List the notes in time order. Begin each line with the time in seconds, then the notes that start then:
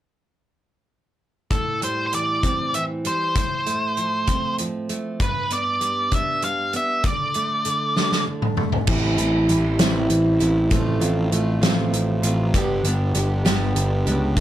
1.51 A2 A4, kick, closed hi-hat
1.82 G3 C5, closed hi-hat
2.06 C5
2.13 E3 D5, closed hi-hat
2.43 C4, kick, closed hi-hat
2.74 E3 E5, closed hi-hat
3.05 G3 C5, closed hi-hat
3.35 A2 C5, kick, closed hi-hat
3.66 A3, closed hi-hat
3.97 F3, closed hi-hat
4.27 C4, kick, closed hi-hat
4.58 F3, closed hi-hat
4.89 A3, closed hi-hat
5.20 G2 B4, kick, closed hi-hat
5.50 B3 D5, closed hi-hat
5.81 G3, closed hi-hat
6.11 D4 E5, kick, closed hi-hat
6.42 G3 F5, closed hi-hat
6.73 B3 E5, closed hi-hat
7.04 D3 D5, kick, closed hi-hat
7.34 A3, closed hi-hat
7.65 D3, closed hi-hat
7.96 D4, snare
8.12 snare
8.27 D3
8.42 mid tom
8.57 A3, mid tom
8.72 floor tom
8.87 A1 A2 E3 G3 C4 E4, kick, crash
9.17 A1 G3 C4 E4, closed hi-hat
9.48 A1 E3 G3 C4 E4, closed hi-hat
9.79 A1 A2 E3 G3 C4 E4, snare, closed hi-hat
10.10 A1, closed hi-hat
10.39 A1 G3 C4 E4, closed hi-hat
10.70 A1 A2 F3 A3 C4 F4, kick, closed hi-hat
11.00 A1 A3 C4 F4, closed hi-hat
11.31 A1 F3 A3 C4 F4, closed hi-hat
11.62 A1 A2 F3 A3 C4 F4, snare, closed hi-hat
11.92 A1, closed hi-hat
12.22 A1 C4 F4, closed hi-hat
12.26 A3
12.54 G1 G2 D3 G3 B3 D4 G4, kick, closed hi-hat
12.84 G1 B3 D4 G4, closed hi-hat
12.88 G3
13.14 G1 G3 B3 D4 G4, closed hi-hat
13.45 G1 G2 D3 G3 B3 D4 G4, snare, closed hi-hat
13.75 G1, closed hi-hat
14.06 C#2 G3 B3 D4 G4, closed hi-hat
14.37 D2 D3, kick, closed hi-hat